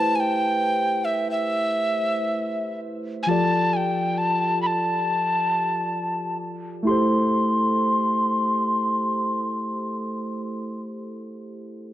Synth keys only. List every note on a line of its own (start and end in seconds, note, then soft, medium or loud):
0.00 3.23 A3 medium
0.00 3.24 E4 medium
0.00 3.24 G4 medium
0.00 3.25 B4 medium
0.00 3.25 C5 medium
3.27 6.82 F3 medium
3.27 6.82 F4 medium
3.27 6.82 G4 medium
3.27 6.83 A4 medium
3.27 6.83 D5 medium
6.83 10.80 A3 medium
6.83 10.82 E4 medium
6.83 10.84 G4 medium
6.89 10.86 A4 medium
6.89 10.88 C5 medium